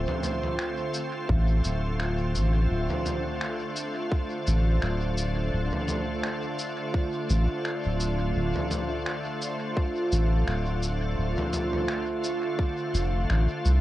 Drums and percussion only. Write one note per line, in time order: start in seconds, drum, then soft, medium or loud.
0.08 mid tom medium
0.23 mid tom medium
0.23 shaker medium
0.43 mid tom medium
0.59 finger snap medium
0.94 shaker medium
1.29 kick loud
1.64 shaker medium
2.00 finger snap medium
2.35 shaker soft
2.90 mid tom medium
3.06 mid tom medium
3.06 shaker soft
3.41 finger snap medium
3.76 shaker medium
4.12 kick loud
4.47 shaker medium
4.82 finger snap medium
5.18 shaker soft
5.73 mid tom medium
5.88 mid tom medium
5.88 shaker medium
6.23 finger snap medium
6.59 shaker medium
6.94 kick loud
7.30 shaker soft
7.65 finger snap medium
8.00 shaker medium
8.56 mid tom medium
8.71 mid tom medium
8.71 shaker medium
9.06 finger snap medium
9.42 shaker medium
9.77 kick loud
10.12 shaker medium
10.48 finger snap medium
10.83 shaker medium
11.38 mid tom medium
11.53 mid tom medium
11.53 shaker medium
11.73 mid tom medium
11.88 finger snap medium
12.24 shaker medium
12.59 kick loud
12.95 shaker medium
13.30 finger snap medium
13.65 shaker medium